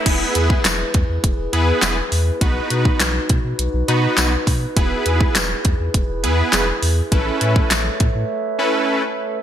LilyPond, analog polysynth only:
\new Staff \with { instrumentName = "Analog polysynth" } { \time 4/4 \key e \major \tempo 4 = 102 <b e' gis' b'>4 r4. <b e' gis' b'>8. r8. | <b dis' fis' b'>4 r4. <b dis' fis' b'>8. r8. | <b e' gis' b'>4 r4. <b e' gis' b'>8. r8. | <cis' e' a' b'>4 r4. <cis' e' a' b'>8. r8. | }